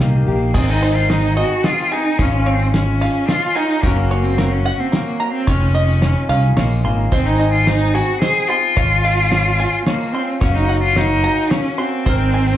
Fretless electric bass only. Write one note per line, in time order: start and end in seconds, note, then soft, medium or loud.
0.00 0.24 C2 medium
0.27 0.52 A#1 medium
0.55 1.43 G#1 medium
2.19 3.07 G#1 medium
3.83 4.71 F#1 medium
5.48 6.14 F1 medium
6.29 6.54 C2 medium
6.57 6.82 A#1 medium
6.84 7.09 G#1 medium
7.12 8.01 G#1 medium
8.77 9.65 G#1 medium
10.41 11.30 F#1 medium
12.06 12.57 G#1 medium